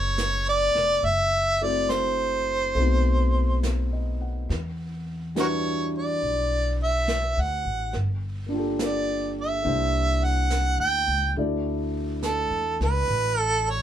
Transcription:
Already playing: F#1 A3 B3 D4 F#4 B4 C#5
0.18 snare, hi-hat pedal
0.49 D5
0.75 F1, snare
1.03 F#1 E5, brush sweep
1.61 A3 C4 E4 F#4 C5 D5
1.89 C5, snare, hi-hat pedal
2.75 B1 A3 C4 D#4, brush sweep
2.79 B3 F#4
3.63 C5, snare, hi-hat pedal
3.93 D#5
4.21 F#5
4.49 E2, brush sweep, snare
5.35 G3 D4 E4 F#4 B4, snare, hi-hat pedal
5.40 F#4 A#4 C#5
5.98 D5
6.22 B1, brush sweep
6.83 E5
7.08 snare, hi-hat pedal
7.37 D2 F#5
7.65 A1
7.93 G1, brush sweep, snare
8.46 A#3 D4
8.51 F4 G4
8.57 A4
8.79 snare, hi-hat pedal
8.85 D5
9.41 E5
9.62 C2 A#3 D4 E4 G4, brush sweep
9.67 C5
10.24 F#5
10.50 snare, hi-hat pedal
10.79 D2 G5
11.08 C#2
11.36 D2 A3 D4 E4 F#4 D5, brush sweep
12.23 A4, snare, hi-hat pedal
12.51 E2
12.80 C#2 B4, snare
13.08 A1, brush sweep
13.40 A4
13.70 C#5

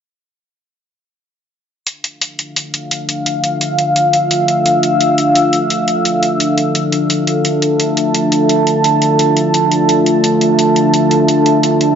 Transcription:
1.87 D4 A4 E5 F5, closed hi-hat
1.99 F4
2.04 closed hi-hat
2.22 closed hi-hat
2.34 A4
2.39 closed hi-hat
2.56 closed hi-hat
2.74 closed hi-hat
2.91 E6, closed hi-hat
3.09 closed hi-hat
3.26 closed hi-hat
3.44 closed hi-hat
3.61 closed hi-hat
3.79 closed hi-hat
3.96 closed hi-hat
4.13 closed hi-hat
4.31 closed hi-hat
4.48 closed hi-hat
4.66 closed hi-hat
4.83 closed hi-hat
5.01 closed hi-hat
5.18 closed hi-hat
5.35 closed hi-hat
5.53 closed hi-hat
5.70 closed hi-hat
5.88 closed hi-hat
6.05 closed hi-hat
6.23 closed hi-hat
6.40 closed hi-hat
6.58 closed hi-hat
6.75 closed hi-hat
6.92 closed hi-hat
7.10 closed hi-hat
7.27 closed hi-hat
7.45 A5, closed hi-hat
7.62 closed hi-hat
7.80 closed hi-hat
7.97 closed hi-hat
8.14 closed hi-hat
8.32 closed hi-hat
8.49 closed hi-hat
8.67 closed hi-hat
8.84 closed hi-hat
9.02 closed hi-hat
9.19 closed hi-hat
9.37 closed hi-hat
9.54 closed hi-hat
9.72 closed hi-hat
9.89 closed hi-hat
10.06 closed hi-hat
10.24 closed hi-hat
10.41 closed hi-hat
10.59 closed hi-hat
10.76 closed hi-hat
10.94 closed hi-hat
11.11 closed hi-hat
11.28 closed hi-hat
11.46 closed hi-hat
11.63 closed hi-hat
11.81 closed hi-hat

